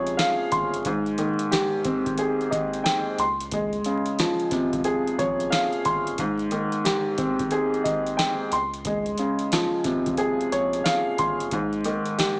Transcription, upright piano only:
0.00 0.85 C3 medium
0.00 0.86 C#3 medium
0.00 0.86 F3 medium
0.00 0.86 G#3 medium
0.00 0.85 G#4 loud
0.00 0.85 C#5 medium
0.00 0.51 C6 medium
0.17 0.85 F5 loud
0.52 0.85 C6 medium
0.86 3.19 G#2 medium
1.18 3.19 D#3 medium
1.51 3.18 G4 loud
1.85 3.19 C4 medium
2.19 3.19 G#4 medium
2.51 3.18 D#5 medium
2.84 3.18 G5 medium
3.20 5.84 C6 medium
3.53 6.19 G#3 medium
3.86 6.19 C#3 medium
4.20 6.19 F3 medium
4.52 6.19 C3 medium
4.85 6.18 G#4 loud
5.19 6.19 C#5 medium
5.51 6.18 F5 loud
5.86 6.19 C6 loud
6.20 8.52 G#2 medium
6.52 8.52 D#3 medium
6.85 8.52 G4 medium
7.18 8.52 C4 medium
7.52 8.52 G#4 medium
7.84 8.51 D#5 medium
8.17 8.51 G5 medium
8.53 11.17 C6 medium
8.87 11.53 G#3 medium
9.19 11.52 C#3 medium
9.53 11.52 F3 medium
9.85 11.52 C3 medium
10.18 11.52 G#4 loud
10.52 11.52 C#5 medium
10.84 11.51 F5 loud
11.19 11.52 C6 medium
11.53 12.40 G#2 medium
11.86 12.40 D#3 medium
12.18 12.40 G4 medium

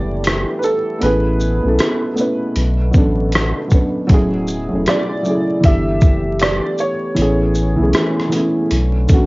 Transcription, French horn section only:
0.00 0.99 E3 medium
0.00 4.06 A3 medium
0.00 4.06 B3 medium
0.00 1.01 G4 medium
1.02 5.60 B2 medium
1.02 2.55 B4 medium
2.56 4.08 D3 medium
4.10 5.62 F#3 medium
4.10 5.63 E4 medium
4.10 5.62 G#4 medium
5.64 7.16 E3 medium
5.64 9.26 A3 medium
5.64 9.26 B3 medium
5.64 7.16 G4 medium
7.18 9.26 C#4 medium
7.18 8.70 G#4 medium
8.72 9.26 D3 medium

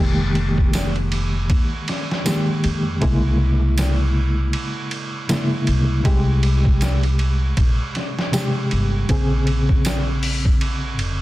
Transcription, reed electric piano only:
0.00 2.21 D#3 medium
0.00 2.22 G#3 medium
0.00 2.22 A#3 medium
0.00 2.22 G4 medium
2.25 2.97 D#3 medium
2.25 2.98 G#3 medium
2.25 2.98 A#3 medium
2.25 2.98 G4 medium
3.01 5.25 C#3 medium
3.01 5.26 G#3 medium
3.01 5.26 A#3 medium
3.01 5.26 E4 medium
5.29 6.01 C#3 medium
5.29 6.01 G#3 medium
5.29 6.02 A#3 medium
5.29 6.02 E4 medium
6.04 8.29 C3 medium
6.04 8.29 G#3 medium
6.04 8.30 G4 medium
8.32 9.05 C3 medium
8.32 9.05 G#3 medium
8.32 9.06 G4 medium
9.09 11.22 C#3 medium
9.09 11.22 C4 medium
9.09 11.22 G#4 medium

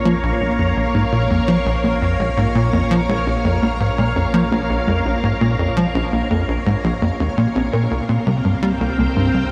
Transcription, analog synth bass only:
0.05 0.15 F3 loud
0.23 0.32 A#1 loud
0.41 0.50 A#1 medium
0.59 0.73 F2 medium
0.77 0.86 A#1 medium
0.95 1.04 G#2 medium
1.12 1.26 A#2 medium
1.30 1.40 F2 medium
1.48 1.57 F3 loud
1.66 1.75 A#1 loud
1.84 1.93 A#1 medium
2.02 2.16 F2 medium
2.19 2.29 A#1 medium
2.37 2.47 G#2 medium
2.55 2.69 A#2 medium
2.73 2.82 F2 medium
2.91 3.00 F3 loud
3.09 3.18 A#1 loud
3.27 3.36 A#1 medium
3.45 3.59 F2 medium
3.63 3.72 A#1 medium
3.80 3.90 G#2 medium
3.98 4.12 A#2 medium
4.16 4.25 F2 medium
4.34 4.43 F3 loud
4.52 4.61 A#1 loud
4.70 4.79 A#1 medium
4.88 5.02 F2 medium
5.06 5.15 A#1 medium
5.23 5.33 G#2 medium
5.41 5.55 A#2 medium
5.59 5.68 F2 medium
5.77 5.86 F3 loud
5.95 6.04 A#1 loud
6.12 6.22 A#1 medium
6.30 6.44 F2 medium
6.48 6.58 A#1 medium
6.66 6.75 G#2 medium
6.84 6.93 A#1 loud
7.02 7.11 F2 medium
7.20 7.29 D#2 medium
7.38 7.47 A#2 medium
7.55 7.69 A#1 loud
7.73 7.87 A#2 medium
7.91 8.00 C2 medium
8.09 8.18 A#2 medium
8.27 8.41 C3 medium
8.45 8.54 G2 medium
8.63 8.72 G3 loud
8.81 8.90 C2 loud
8.98 9.08 C2 medium
9.16 9.30 G2 medium
9.34 9.43 C2 medium

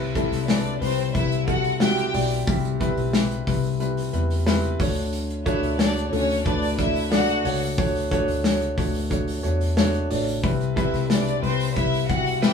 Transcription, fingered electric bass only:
0.00 0.28 C2 loud
0.32 0.78 C2 medium
0.82 1.12 C2 loud
1.15 2.10 C2 loud
2.14 2.45 B1 loud
2.47 2.94 C2 loud
2.97 3.43 B1 medium
3.47 4.09 C2 loud
4.13 4.75 E2 medium
4.80 5.59 D2 loud
5.63 6.09 D2 medium
6.12 6.43 D2 loud
6.46 7.41 D2 loud
7.45 7.76 C#2 medium
7.78 8.25 D2 loud
8.28 8.74 D2 medium
8.78 9.40 D2 loud
9.44 10.07 E2 medium
10.10 10.41 A1 medium
10.44 10.90 C2 loud
10.93 11.40 C2 medium
11.43 11.74 C2 medium
11.76 12.53 C2 loud

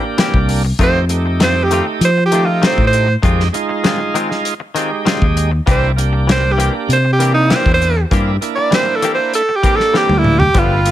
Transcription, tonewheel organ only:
0.00 0.63 A#3 medium
0.00 0.63 D4 medium
0.00 0.63 G4 medium
0.80 1.05 A3 medium
0.80 1.05 D#4 medium
0.80 1.05 G4 medium
1.09 2.10 A3 medium
1.09 2.10 D#4 medium
1.09 2.11 G4 medium
2.32 3.07 A3 medium
2.32 3.08 D#4 medium
2.32 3.08 G4 medium
3.22 3.48 G#3 medium
3.22 3.48 D#4 medium
3.22 3.49 G4 medium
3.53 4.54 G#3 medium
3.53 4.54 D#4 medium
3.53 4.55 F4 loud
4.75 5.51 G#3 medium
4.75 5.51 D#4 medium
4.75 5.51 G4 medium
5.66 5.92 A#3 medium
5.66 5.92 D4 medium
5.66 5.92 E4 medium
5.96 6.98 A#3 medium
5.96 6.98 D4 medium
5.96 6.99 G4 medium
7.19 7.95 A#3 medium
7.19 7.95 D4 medium
7.19 7.96 E4 medium
8.11 8.36 A#3 medium
8.11 8.37 D4 medium
8.11 8.37 E4 medium
8.41 9.42 A#3 medium
8.41 9.42 D4 medium
8.41 9.43 E4 medium
9.63 10.39 A#3 medium
9.63 10.39 D4 medium
9.63 10.40 G4 medium
10.54 10.80 A3 medium
10.54 10.81 B3 medium
10.54 10.81 F4 medium
10.85 10.91 A3 medium
10.85 10.91 B3 medium
10.85 10.91 F4 medium

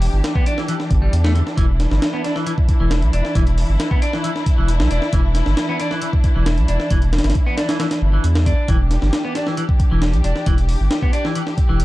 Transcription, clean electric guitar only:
0.36 0.46 B3 loud
0.47 0.57 D4 loud
0.58 0.67 E3 medium
0.69 0.73 E3 loud
1.02 1.12 G3 medium
1.24 1.31 A3 loud
1.35 1.40 D3 medium
1.57 1.65 E3 loud
2.13 2.24 B3 loud
2.24 2.35 D4 loud
2.36 2.45 E3 medium
2.46 2.51 E3 loud
2.80 2.90 E3 medium
3.13 3.34 D4 loud
3.35 3.43 E3 loud
3.91 4.01 B3 loud
4.02 4.12 D4 loud
4.14 4.23 E3 medium
4.24 4.29 E3 loud
4.58 4.68 E3 medium
4.91 5.12 D4 loud
5.13 5.21 E3 loud
5.69 5.79 B3 loud
5.80 5.90 D4 loud
5.91 6.01 E3 medium
6.02 6.07 E3 loud
6.36 6.46 E3 medium
6.69 6.90 D4 loud
6.91 6.98 E3 loud
7.47 7.57 B3 loud
7.57 7.68 D4 loud
7.69 7.78 E3 medium
7.80 7.84 E3 loud
8.13 8.24 E3 medium
8.47 8.68 D4 loud
8.69 8.76 E3 loud
9.25 9.35 B3 loud
9.36 9.46 D4 loud
9.47 9.56 E3 medium
9.58 9.62 E3 loud
9.91 10.02 E3 medium
10.24 10.45 D4 loud
10.47 10.54 E3 loud
11.03 11.13 B3 loud
11.13 11.23 D4 loud
11.25 11.35 E3 medium
11.36 11.40 E3 loud
11.69 11.79 E3 medium

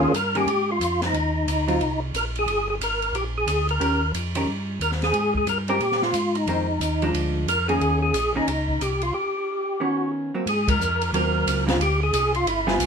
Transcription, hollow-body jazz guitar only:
0.00 0.11 D#3 soft
0.00 0.12 A#3 medium
0.00 0.12 C#4 medium
0.00 0.12 G#4 medium
0.35 0.46 D#3 soft
0.35 0.47 A#3 medium
0.35 0.47 C#4 medium
0.35 0.47 G#4 medium
1.68 1.79 F#3 soft
1.68 1.80 C4 medium
1.68 1.80 F4 medium
3.80 3.99 D#3 soft
3.80 4.00 C#4 soft
3.80 4.00 G4 soft
3.80 4.00 A#4 soft
4.36 4.46 D#3 medium
4.36 4.47 C#4 medium
4.36 4.47 G4 medium
4.36 4.47 A#4 medium
5.69 5.80 G#3 soft
5.69 5.80 C4 medium
5.69 5.80 G4 medium
5.69 5.80 A#4 medium
6.48 6.67 D#3 soft
6.48 6.67 G#3 soft
6.48 6.67 C4 medium
7.02 7.45 F3 medium
7.02 7.45 G#3 medium
7.02 7.46 D4 medium
7.69 8.11 D#3 soft
7.69 8.12 A#3 medium
7.69 8.12 C#4 medium
7.69 8.12 G#4 medium
8.35 8.46 D#3 soft
8.35 8.46 A#3 soft
8.35 8.46 C#4 medium
8.35 8.47 G#4 medium
9.80 10.30 D#3 soft
9.80 10.30 B3 soft
9.80 10.31 C#4 soft
10.34 10.45 F#3 soft
10.34 10.46 A#3 soft
10.34 10.46 C4 medium
11.14 11.63 F#3 soft
11.14 11.64 A#3 medium
11.14 11.64 C4 medium
11.66 11.78 D3 medium
11.66 11.78 G#3 medium
11.66 11.79 C4 medium
11.66 11.79 F4 medium
12.67 12.86 G3 medium
12.67 12.86 B3 medium
12.67 12.86 F4 medium
12.67 12.86 G#4 medium

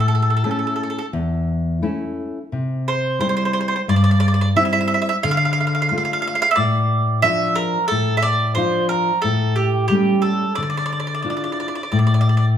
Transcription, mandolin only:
0.00 0.07 A4 soft
0.08 0.14 A4 soft
0.15 0.21 A4 soft
0.22 0.29 A4 soft
0.30 0.35 A4 soft
0.37 0.43 A4 soft
0.44 0.50 A4 soft
0.51 0.58 A4 soft
0.59 0.66 A4 soft
0.67 0.75 A4 soft
0.76 0.82 A4 soft
0.83 0.89 A4 soft
0.90 0.97 A4 soft
0.99 1.05 A4 soft
2.88 3.18 C5 medium
3.21 3.28 C5 medium
3.29 3.35 C5 soft
3.37 3.43 C5 medium
3.45 3.52 C5 soft
3.53 3.59 C5 medium
3.61 3.67 C5 soft
3.68 3.74 C5 medium
3.76 3.81 C5 soft
3.89 3.95 D5 medium
3.96 4.03 D5 medium
4.04 4.10 D5 medium
4.11 4.19 D5 medium
4.20 4.27 D5 medium
4.28 4.33 D5 medium
4.34 4.40 D5 soft
4.41 4.48 D5 medium
4.57 4.64 E5 medium
4.65 4.71 E5 soft
4.73 4.79 E5 medium
4.81 4.86 E5 soft
4.88 4.93 E5 medium
4.94 5.00 E5 soft
5.02 5.08 E5 medium
5.09 5.15 E5 medium
5.23 5.30 F5 medium
5.31 5.36 F5 medium
5.37 5.44 F5 medium
5.45 5.52 F5 medium
5.53 5.59 F5 medium
5.60 5.66 F5 soft
5.67 5.73 F5 soft
5.75 5.81 F5 soft
5.82 5.88 F5 medium
5.89 5.96 F5 soft
5.98 6.04 F5 soft
6.05 6.12 F5 soft
6.13 6.20 F5 medium
6.22 6.26 F5 medium
6.27 6.34 F5 medium
6.35 6.41 F5 medium
6.42 6.49 F5 medium
6.51 6.58 E5 medium
6.56 7.19 D5 medium
7.22 7.55 E5 medium
7.55 7.87 A#4 medium
7.88 8.15 A4 medium
8.17 8.25 E5 medium
8.22 8.54 D5 medium
8.55 8.89 C5 medium
8.89 9.20 A#4 medium
9.22 9.55 A4 medium
9.56 9.87 G4 medium
9.88 10.21 G4 medium
10.22 10.54 A4 medium
10.55 10.61 D5 medium
10.63 10.68 D5 soft
10.70 10.76 D5 soft
10.77 10.85 D5 medium
10.86 10.91 D5 medium
10.92 10.98 D5 soft
11.00 11.06 D5 soft
11.07 11.13 D5 soft
11.14 11.21 D5 soft
11.22 11.29 D5 soft
11.30 11.36 D5 soft
11.37 11.43 D5 soft
11.44 11.51 D5 soft
11.52 11.59 D5 soft
11.60 11.67 D5 soft
11.68 11.74 D5 soft
11.75 11.82 D5 soft
11.83 11.90 D5 soft
11.92 11.98 D5 medium
11.99 12.06 D5 soft
12.07 12.13 D5 soft
12.14 12.20 D5 soft
12.21 12.28 D5 medium
12.29 12.36 D5 soft
12.37 12.45 D5 soft

